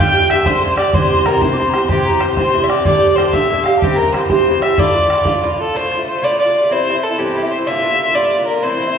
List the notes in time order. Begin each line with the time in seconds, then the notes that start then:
Already playing: A#2
0.00 D3 D4 G4 G5 G6
0.13 D3 D4 G4
0.30 A#2 D3 D4 G4 E5 E6, bodhran
0.46 A#2 D3 D4 G4 C5 C6, bodhran
0.63 A#2 D3 D4 G4
0.78 D4 G4 D5 D6, bodhran
0.82 D3
0.94 C3 E3 C4 G4 C5 C6, bodhran
1.10 E3 C4 G4
1.26 C3 E3 C4 G4 A#4 A#5, bodhran
1.42 C3 E3 C4 G4 C5 C6, bodhran
1.53 D6
1.57 C3 E3 C4 G4 C6
1.69 A#5
1.74 E3 C4 G4 C6, bodhran
1.89 C3 E3 C4 G4 G5, bodhran
2.05 C4 G4 A#5
2.09 E3
2.20 C3 E3 C4 C5 C6, bodhran
2.24 G4
2.35 E3 C4 G4 C5 C6, bodhran
2.39 C3
2.53 C3 E3 C4 G4
2.64 E5
2.68 E3 C4 G4 D5 D6, bodhran
2.85 A#2 D3 D4 G4 D5 D6, bodhran
3.00 D3 D4 G4
3.16 A#2 D3 D4 C5 C6, bodhran
3.20 G4
3.33 A#2 D3 D4 G4 E5 E6, bodhran
3.50 A#2 D3 D4 G4
3.63 D4 G4 F5, bodhran
3.68 D3
3.77 G4 A5
3.82 G2 E3 C4 G4 G5, bodhran
3.96 G4 A#4 A#5
4.00 E3 C4
4.12 G2 E3 C4 C5 C6, bodhran
4.17 G4
4.30 G2 E3 C4 G4 C5 C6, bodhran
4.46 G2 E3 C4 G4
4.62 E3 C4 G4 E5 E6, bodhran
4.77 A2 D3 D4 F4 D5 D6, bodhran
4.94 D3 D4 F4
5.10 A2 D3 D4 F4, bodhran
5.25 A2 D3 D4 F4, bodhran
5.41 A2 D3 D4 F4
5.57 D3 D4 F4 A4
5.74 A2 D3 A3 F4 C5
5.90 A2 D3 A3 F4
5.97 D3 A3 F4
6.07 C5
6.12 D3 A3 F4
6.21 A2 D3 A3 F4 D5
6.36 A2 D3 A3 F4 D5
6.45 D3 A3 F4
6.61 D3 A3 F4
6.70 G2 E3 C4 E4 C5
6.87 G2 E3 C4 E4
6.94 E3 C4 E4
7.03 A4
7.11 E3 C4 E4
7.19 G2 E3 C4 E4 G4
7.35 G2 E3 C4 E4
7.42 E3 C4 E4
7.51 C5
7.58 E3 C4 E4
7.66 G2 D3 A#3 F4 E5
7.81 G2 D3 A#3 F4
7.90 D3 A#3 F4
8.05 D3 A#3 F4
8.13 G2 D3 A#3 F4 D5
8.30 G2 D3 A#3 F4
8.38 D3 A#3 F4
8.47 A#4
8.54 D3 A#3 F4
8.62 A2 E3 C4 E4 C5
8.79 A2 E3 C4 E4
8.87 E3 C4 E4